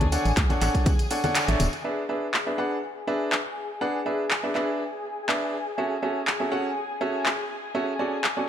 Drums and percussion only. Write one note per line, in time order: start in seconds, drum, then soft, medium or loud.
0.01 closed hi-hat soft
0.01 high conga medium
0.12 open hi-hat loud
0.12 tambourine medium
0.25 closed hi-hat soft
0.25 tambourine soft
0.37 kick loud
0.37 clap loud
0.37 closed hi-hat loud
0.37 tambourine soft
0.49 closed hi-hat soft
0.49 tambourine soft
0.49 high conga medium
0.61 clap soft
0.61 open hi-hat loud
0.61 tambourine medium
0.74 kick medium
0.74 closed hi-hat soft
0.74 tambourine soft
0.86 kick loud
0.86 closed hi-hat loud
0.86 tambourine medium
0.86 high conga loud
0.99 closed hi-hat soft
0.99 tambourine soft
1.10 open hi-hat loud
1.10 tambourine medium
1.24 closed hi-hat soft
1.24 tambourine soft
1.24 high conga medium
1.35 clap loud
1.35 closed hi-hat loud
1.35 tambourine medium
1.48 closed hi-hat soft
1.48 tambourine soft
1.60 open hi-hat loud
1.60 tambourine medium
1.60 high conga medium
1.73 closed hi-hat soft
1.73 tambourine soft
2.34 clap loud
3.32 clap loud
4.31 clap loud
4.55 clap soft
5.29 clap loud
6.27 clap loud
7.26 clap loud
8.24 clap loud